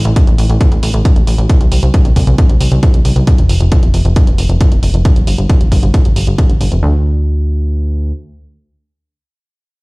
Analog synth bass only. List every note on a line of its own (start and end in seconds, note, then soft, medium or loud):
0.05 0.13 A1 medium
0.27 0.35 A1 medium
0.38 0.46 A1 medium
0.50 0.58 A1 medium
0.72 0.80 A1 medium
0.83 0.91 A1 medium
0.94 1.02 A1 medium
1.16 1.24 A1 medium
1.27 1.35 A1 loud
1.38 1.46 A1 medium
1.61 1.69 C2 medium
1.72 1.80 C2 medium
1.83 1.91 C2 medium
2.05 2.13 C2 medium
2.16 2.24 C2 medium
2.27 2.35 C2 medium
2.49 2.58 C2 medium
2.61 2.69 C2 medium
2.72 2.80 C2 medium
2.94 3.02 C2 medium
3.05 3.13 C2 medium
3.16 3.24 C2 medium
3.38 3.46 F1 medium
3.49 3.58 F1 medium
3.61 3.69 F1 medium
3.83 3.91 F1 medium
3.94 4.02 F1 medium
4.05 4.13 F1 medium
4.27 4.35 F1 medium
4.38 4.46 F1 loud
4.49 4.58 F1 medium
4.72 4.80 F1 medium
4.83 4.91 F1 medium
4.94 5.02 F1 medium
5.16 5.24 G1 medium
5.27 5.35 G1 medium
5.38 5.46 G1 medium
5.61 5.69 G1 medium
5.72 5.80 G1 medium
5.83 5.91 G1 medium
6.05 6.13 G1 medium
6.16 6.24 G1 medium
6.27 6.35 G1 medium
6.49 6.58 G1 medium
6.61 6.69 G1 loud
6.72 6.80 F1 medium
6.83 8.12 D2 medium